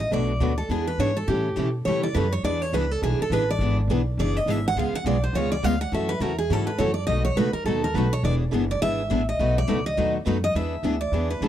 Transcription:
Already playing: upright bass A1
0.00 steel-string acoustic guitar D#5
0.11 upright bass B1, steel-string acoustic guitar B2 F#3 A3 D4 F#4 B4 D5
0.40 upright bass D2, steel-string acoustic guitar B2 F#3 A3 D4 F#4 B4
0.58 steel-string acoustic guitar A4
0.69 upright bass E2, steel-string acoustic guitar E3 B3 D4 G#4 B4
0.87 steel-string acoustic guitar B4
0.99 upright bass G#2, steel-string acoustic guitar E3 B3 D4 G#4 B4 C#5
1.17 steel-string acoustic guitar A4
1.28 upright bass A2, steel-string acoustic guitar C#3 E3 G3 A3 C#4 E4 G4 A4
1.56 upright bass B2, steel-string acoustic guitar C#3 E3 G3 A3 C#4 E4 G4 A4
1.85 upright bass C#3, steel-string acoustic guitar C#3 E3 G3 A3 C#4 E4 G4 A4 C#5
2.03 steel-string acoustic guitar D5
2.15 upright bass F#2, steel-string acoustic guitar C#3 E3 G3 A3 C#4 E4 G4 A4 B4
2.32 steel-string acoustic guitar C#5
2.43 upright bass E2, steel-string acoustic guitar E3 B3 D4 G#4 B4 D5
2.62 steel-string acoustic guitar C#5
2.73 upright bass C#2, steel-string acoustic guitar E3 B3 D4 G#4 B4
2.91 steel-string acoustic guitar A4
3.02 upright bass B1, steel-string acoustic guitar E3 B3 D4 G#4 B4
3.19 steel-string acoustic guitar A4, muted upright bass stroke
3.30 upright bass A1, steel-string acoustic guitar E3 B3 D4 G#4 B4
3.50 steel-string acoustic guitar D5
3.59 upright bass G#1, steel-string acoustic guitar E3 B3 D4 G#4 B4
3.88 upright bass B1, steel-string acoustic guitar E3 B3 D4 G#4 B4
4.17 upright bass F#1, steel-string acoustic guitar E3 B3 D4 G#4 B4 D5
4.37 steel-string acoustic guitar D#5
4.46 upright bass G#1, steel-string acoustic guitar E3 B3 D4 G#4 B4
4.50 steel-string acoustic guitar E5
4.68 steel-string acoustic guitar F#5
4.76 upright bass C#2, steel-string acoustic guitar C#3 G#3 B3 F4 G#4 F5
4.92 steel-string acoustic guitar F#5, muted upright bass stroke
5.04 upright bass B1, steel-string acoustic guitar C#3 G#3 B3 F4 G#4 D5
5.24 steel-string acoustic guitar C5
5.33 upright bass C#2, steel-string acoustic guitar C#3 G#3 B3 F4 G#4 C#5
5.52 steel-string acoustic guitar D5
5.63 upright bass D2, steel-string acoustic guitar C#3 G#3 B3 F4 G#4 F5
5.81 steel-string acoustic guitar F#5
5.92 upright bass F#2, steel-string acoustic guitar C#3 E3 F#3 A3 C#4 E4 F#4 A4 E5
6.09 steel-string acoustic guitar B4
6.20 upright bass E2, steel-string acoustic guitar C#3 E3 F#3 A3 C#4 E4 F#4 A4 A#4
6.38 steel-string acoustic guitar G#4
6.50 upright bass G#2, steel-string acoustic guitar C#3 E3 F#3 A3 C#4 E4 F#4 A4
6.67 steel-string acoustic guitar B4
6.78 upright bass F#2, steel-string acoustic guitar C#3 E3 F#3 A3 C#4 E4 F#4 A4 C#5
6.94 steel-string acoustic guitar D5
7.07 upright bass B1, steel-string acoustic guitar B2 F#3 A3 D#4 F#4 B4 D#5
7.25 steel-string acoustic guitar C#5
7.36 upright bass C#2, steel-string acoustic guitar B2 F#3 A3 D#4 F#4 B4
7.53 steel-string acoustic guitar A#4, muted upright bass stroke
7.64 upright bass D#2, steel-string acoustic guitar B2 F#3 A3 D#4 F#4 A4 B4
7.84 steel-string acoustic guitar A#4
7.94 upright bass B1, steel-string acoustic guitar B2 F#3 A3 D#4 F#4 B4
8.13 steel-string acoustic guitar C#5
8.23 upright bass E1, steel-string acoustic guitar E3 B3 D4 G#4 B4 D5
8.51 upright bass F#1, steel-string acoustic guitar E3 B3 D4 G#4 B4
8.71 steel-string acoustic guitar D5
8.81 upright bass G#1, steel-string acoustic guitar E3 B3 D4 G#4 B4 E5
9.10 upright bass A1, steel-string acoustic guitar E3 B3 D4 G#4 B4
9.29 steel-string acoustic guitar D#5
9.39 upright bass B1, steel-string acoustic guitar B2 F#3 A3 D#4 F#4 B4
9.58 steel-string acoustic guitar D5
9.68 upright bass C#2, steel-string acoustic guitar B2 F#3 A3 D#4 F#4 B4
9.86 steel-string acoustic guitar D#5
9.98 upright bass D#2, steel-string acoustic guitar B2 F#3 A3 D#4 F#4 B4
10.25 upright bass F#2, steel-string acoustic guitar B2 F#3 A3 D#4 F#4 B4
10.44 steel-string acoustic guitar D#5
10.54 upright bass E2, steel-string acoustic guitar E3 B3 D4 G#4 B4 E5
10.83 upright bass D2, steel-string acoustic guitar E3 B3 D4 G#4 B4
11.01 steel-string acoustic guitar D5
11.12 upright bass E2, steel-string acoustic guitar E3 B3 D4 G#4 B4
11.31 steel-string acoustic guitar B4
11.41 upright bass D2, steel-string acoustic guitar E3 B3 D4 G#4 B4

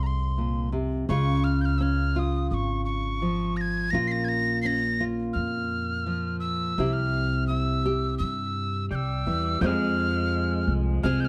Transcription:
Already playing: upright bass C2, nylon-string guitar F2 G#3 C4 G#4
0.03 tin whistle A#5 C6
0.38 nylon-string guitar A#2
0.72 nylon-string guitar C3
1.09 upright bass C#2, nylon-string guitar C#3 G#3 C#4 F4, tin whistle C#6
1.44 tin whistle F6
1.61 tin whistle G6
1.65 tin whistle F6
1.78 nylon-string guitar C#4, tin whistle E6
1.82 tin whistle F6
2.15 nylon-string guitar F4, tin whistle F6
2.19 tin whistle D#6
2.51 upright bass G#1, tin whistle C#6 D#6
2.85 tin whistle C#6
3.22 nylon-string guitar F3
3.57 tin whistle A#6
3.61 tin whistle G#6
3.91 upright bass A#1, nylon-string guitar A#2 A#3 C#4 F4, tin whistle A#6
4.08 tin whistle A#6 C7
4.25 tin whistle G#6 A#6
4.62 nylon-string guitar C#4, tin whistle C7
4.66 tin whistle A#6
5.00 nylon-string guitar F4
5.33 upright bass F2, tin whistle F6
6.06 nylon-string guitar F3
6.40 tin whistle E6
6.78 upright bass C2, nylon-string guitar C3 C4 E4 G4
6.93 tin whistle F6
7.47 nylon-string guitar E4, tin whistle E6
7.86 nylon-string guitar G4
8.18 upright bass G2, tin whistle E6
8.91 upright bass C2, pedal steel guitar G3, tin whistle G6
8.95 tin whistle E6
9.27 upright bass E2, nylon-string guitar E3
9.61 nylon-string guitar F2 F3 G#3 C4 G#4, upright bass F2, tin whistle G6
9.66 tin whistle F6
10.68 upright bass C2
11.03 upright bass C2, nylon-string guitar G#3 C4 G#4, tin whistle F6
11.20 tin whistle G6
11.25 tin whistle F6

